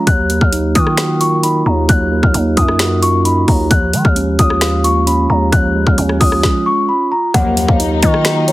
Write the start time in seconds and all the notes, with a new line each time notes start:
0.07 D#2 F#6, kick, closed hi-hat
0.30 A#3, closed hi-hat
0.41 D#2 F6, kick
0.52 D#4, closed hi-hat
0.75 D#3 F4 D#6, kick, closed hi-hat
0.87 cross-stick
0.97 F#4, finger snap, snare, closed hi-hat
1.21 F4 C#6, closed hi-hat
1.43 D#4 B5, closed hi-hat
1.66 D#2 A#3 A#5
1.89 D#2 F#3 F#6, kick, closed hi-hat
2.12 A#3
2.23 D#2 F6, kick
2.34 D#2 D#4, closed hi-hat
2.57 F#2 F4 D#6, kick, closed hi-hat
2.68 cross-stick
2.79 F#4, finger snap, snare, closed hi-hat
3.02 F4 C#6, closed hi-hat
3.25 D#4 B5, closed hi-hat
3.48 D#2 A#3 A#5, kick, open hi-hat
3.71 D#2 F3 F#6, kick, closed hi-hat
3.93 D#3 G#3, closed hi-hat
4.05 D#2 F6, kick
4.16 C#4, closed hi-hat
4.39 D#2 F4 D#6, kick, closed hi-hat
4.50 cross-stick
4.61 F5, finger snap, snare, closed hi-hat
4.84 F4 C#6, closed hi-hat
5.07 C#4 B5, closed hi-hat
5.30 D#2 G#3 A#5
5.52 D#2 F3 F#6, kick, closed hi-hat
5.75 G#3
5.86 D#2 F6, kick
5.98 D#2 C#4, closed hi-hat
6.09 cross-stick
6.20 D#2 F4 D#6, kick, open hi-hat
6.32 cross-stick
6.43 kick, snare
6.66 C#6
6.89 B5
7.12 A#5
7.34 D#2 F#2 D#3 F3 F#3 A#3 D#4 F#5, kick, closed hi-hat
7.57 A#3, closed hi-hat
7.68 D#2 F5, kick
7.80 D#4, closed hi-hat
8.03 D#3 F4 D#5, kick, closed hi-hat
8.14 cross-stick
8.25 F#4, finger snap, snare, closed hi-hat
8.48 C#5, closed hi-hat